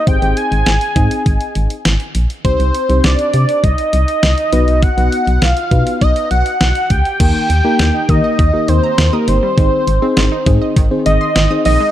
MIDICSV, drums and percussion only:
0, 0, Header, 1, 2, 480
1, 0, Start_track
1, 0, Key_signature, -3, "major"
1, 0, Tempo, 594059
1, 58, Time_signature, 4, 2, 24, 8
1, 9627, End_track
2, 0, Start_track
2, 0, Title_t, "Drums"
2, 57, Note_on_c, 9, 36, 108
2, 57, Note_on_c, 9, 42, 82
2, 138, Note_off_c, 9, 36, 0
2, 138, Note_off_c, 9, 42, 0
2, 179, Note_on_c, 9, 42, 43
2, 260, Note_off_c, 9, 42, 0
2, 298, Note_on_c, 9, 42, 71
2, 379, Note_off_c, 9, 42, 0
2, 419, Note_on_c, 9, 42, 49
2, 500, Note_off_c, 9, 42, 0
2, 535, Note_on_c, 9, 42, 68
2, 537, Note_on_c, 9, 38, 113
2, 616, Note_off_c, 9, 42, 0
2, 618, Note_off_c, 9, 38, 0
2, 656, Note_on_c, 9, 42, 50
2, 736, Note_off_c, 9, 42, 0
2, 775, Note_on_c, 9, 36, 94
2, 775, Note_on_c, 9, 42, 69
2, 856, Note_off_c, 9, 36, 0
2, 856, Note_off_c, 9, 42, 0
2, 898, Note_on_c, 9, 42, 61
2, 979, Note_off_c, 9, 42, 0
2, 1018, Note_on_c, 9, 36, 85
2, 1018, Note_on_c, 9, 42, 70
2, 1099, Note_off_c, 9, 36, 0
2, 1099, Note_off_c, 9, 42, 0
2, 1136, Note_on_c, 9, 42, 49
2, 1216, Note_off_c, 9, 42, 0
2, 1255, Note_on_c, 9, 42, 74
2, 1336, Note_off_c, 9, 42, 0
2, 1376, Note_on_c, 9, 42, 53
2, 1457, Note_off_c, 9, 42, 0
2, 1496, Note_on_c, 9, 42, 80
2, 1497, Note_on_c, 9, 38, 114
2, 1577, Note_off_c, 9, 42, 0
2, 1578, Note_off_c, 9, 38, 0
2, 1615, Note_on_c, 9, 42, 46
2, 1696, Note_off_c, 9, 42, 0
2, 1735, Note_on_c, 9, 42, 77
2, 1816, Note_off_c, 9, 42, 0
2, 1858, Note_on_c, 9, 42, 42
2, 1939, Note_off_c, 9, 42, 0
2, 1977, Note_on_c, 9, 36, 109
2, 1977, Note_on_c, 9, 42, 82
2, 2058, Note_off_c, 9, 36, 0
2, 2058, Note_off_c, 9, 42, 0
2, 2100, Note_on_c, 9, 42, 44
2, 2181, Note_off_c, 9, 42, 0
2, 2218, Note_on_c, 9, 42, 70
2, 2299, Note_off_c, 9, 42, 0
2, 2340, Note_on_c, 9, 42, 51
2, 2420, Note_off_c, 9, 42, 0
2, 2456, Note_on_c, 9, 42, 70
2, 2458, Note_on_c, 9, 38, 112
2, 2536, Note_off_c, 9, 42, 0
2, 2538, Note_off_c, 9, 38, 0
2, 2576, Note_on_c, 9, 42, 51
2, 2657, Note_off_c, 9, 42, 0
2, 2695, Note_on_c, 9, 42, 70
2, 2776, Note_off_c, 9, 42, 0
2, 2818, Note_on_c, 9, 42, 62
2, 2899, Note_off_c, 9, 42, 0
2, 2939, Note_on_c, 9, 36, 84
2, 2939, Note_on_c, 9, 42, 69
2, 3019, Note_off_c, 9, 42, 0
2, 3020, Note_off_c, 9, 36, 0
2, 3056, Note_on_c, 9, 42, 50
2, 3137, Note_off_c, 9, 42, 0
2, 3176, Note_on_c, 9, 42, 74
2, 3257, Note_off_c, 9, 42, 0
2, 3298, Note_on_c, 9, 42, 52
2, 3379, Note_off_c, 9, 42, 0
2, 3417, Note_on_c, 9, 42, 81
2, 3418, Note_on_c, 9, 38, 108
2, 3498, Note_off_c, 9, 42, 0
2, 3499, Note_off_c, 9, 38, 0
2, 3536, Note_on_c, 9, 42, 47
2, 3617, Note_off_c, 9, 42, 0
2, 3657, Note_on_c, 9, 42, 77
2, 3737, Note_off_c, 9, 42, 0
2, 3780, Note_on_c, 9, 42, 44
2, 3861, Note_off_c, 9, 42, 0
2, 3899, Note_on_c, 9, 36, 113
2, 3899, Note_on_c, 9, 42, 81
2, 3980, Note_off_c, 9, 36, 0
2, 3980, Note_off_c, 9, 42, 0
2, 4022, Note_on_c, 9, 42, 44
2, 4102, Note_off_c, 9, 42, 0
2, 4140, Note_on_c, 9, 42, 73
2, 4221, Note_off_c, 9, 42, 0
2, 4261, Note_on_c, 9, 42, 51
2, 4342, Note_off_c, 9, 42, 0
2, 4378, Note_on_c, 9, 42, 70
2, 4380, Note_on_c, 9, 38, 110
2, 4458, Note_off_c, 9, 42, 0
2, 4460, Note_off_c, 9, 38, 0
2, 4498, Note_on_c, 9, 42, 51
2, 4579, Note_off_c, 9, 42, 0
2, 4617, Note_on_c, 9, 36, 93
2, 4617, Note_on_c, 9, 42, 71
2, 4698, Note_off_c, 9, 36, 0
2, 4698, Note_off_c, 9, 42, 0
2, 4740, Note_on_c, 9, 42, 62
2, 4821, Note_off_c, 9, 42, 0
2, 4860, Note_on_c, 9, 36, 81
2, 4860, Note_on_c, 9, 42, 72
2, 4941, Note_off_c, 9, 36, 0
2, 4941, Note_off_c, 9, 42, 0
2, 4977, Note_on_c, 9, 42, 52
2, 5058, Note_off_c, 9, 42, 0
2, 5097, Note_on_c, 9, 42, 72
2, 5178, Note_off_c, 9, 42, 0
2, 5218, Note_on_c, 9, 42, 52
2, 5299, Note_off_c, 9, 42, 0
2, 5338, Note_on_c, 9, 42, 79
2, 5339, Note_on_c, 9, 38, 112
2, 5418, Note_off_c, 9, 42, 0
2, 5420, Note_off_c, 9, 38, 0
2, 5457, Note_on_c, 9, 42, 48
2, 5537, Note_off_c, 9, 42, 0
2, 5576, Note_on_c, 9, 42, 76
2, 5578, Note_on_c, 9, 36, 84
2, 5657, Note_off_c, 9, 42, 0
2, 5659, Note_off_c, 9, 36, 0
2, 5699, Note_on_c, 9, 42, 44
2, 5780, Note_off_c, 9, 42, 0
2, 5818, Note_on_c, 9, 36, 111
2, 5818, Note_on_c, 9, 42, 83
2, 5818, Note_on_c, 9, 49, 89
2, 5898, Note_off_c, 9, 49, 0
2, 5899, Note_off_c, 9, 36, 0
2, 5899, Note_off_c, 9, 42, 0
2, 6059, Note_on_c, 9, 42, 74
2, 6140, Note_off_c, 9, 42, 0
2, 6296, Note_on_c, 9, 42, 72
2, 6298, Note_on_c, 9, 38, 113
2, 6377, Note_off_c, 9, 42, 0
2, 6379, Note_off_c, 9, 38, 0
2, 6536, Note_on_c, 9, 36, 96
2, 6536, Note_on_c, 9, 42, 72
2, 6617, Note_off_c, 9, 36, 0
2, 6617, Note_off_c, 9, 42, 0
2, 6779, Note_on_c, 9, 36, 88
2, 6779, Note_on_c, 9, 42, 71
2, 6860, Note_off_c, 9, 36, 0
2, 6860, Note_off_c, 9, 42, 0
2, 7016, Note_on_c, 9, 42, 75
2, 7097, Note_off_c, 9, 42, 0
2, 7257, Note_on_c, 9, 42, 82
2, 7258, Note_on_c, 9, 38, 111
2, 7338, Note_off_c, 9, 42, 0
2, 7339, Note_off_c, 9, 38, 0
2, 7496, Note_on_c, 9, 42, 77
2, 7577, Note_off_c, 9, 42, 0
2, 7738, Note_on_c, 9, 36, 115
2, 7738, Note_on_c, 9, 42, 84
2, 7818, Note_off_c, 9, 36, 0
2, 7819, Note_off_c, 9, 42, 0
2, 7979, Note_on_c, 9, 42, 75
2, 8059, Note_off_c, 9, 42, 0
2, 8216, Note_on_c, 9, 42, 70
2, 8218, Note_on_c, 9, 38, 113
2, 8296, Note_off_c, 9, 42, 0
2, 8298, Note_off_c, 9, 38, 0
2, 8455, Note_on_c, 9, 36, 93
2, 8455, Note_on_c, 9, 42, 72
2, 8536, Note_off_c, 9, 36, 0
2, 8536, Note_off_c, 9, 42, 0
2, 8698, Note_on_c, 9, 36, 85
2, 8698, Note_on_c, 9, 42, 74
2, 8779, Note_off_c, 9, 36, 0
2, 8779, Note_off_c, 9, 42, 0
2, 8936, Note_on_c, 9, 42, 76
2, 9016, Note_off_c, 9, 42, 0
2, 9176, Note_on_c, 9, 42, 82
2, 9177, Note_on_c, 9, 38, 119
2, 9257, Note_off_c, 9, 42, 0
2, 9258, Note_off_c, 9, 38, 0
2, 9415, Note_on_c, 9, 46, 79
2, 9496, Note_off_c, 9, 46, 0
2, 9627, End_track
0, 0, End_of_file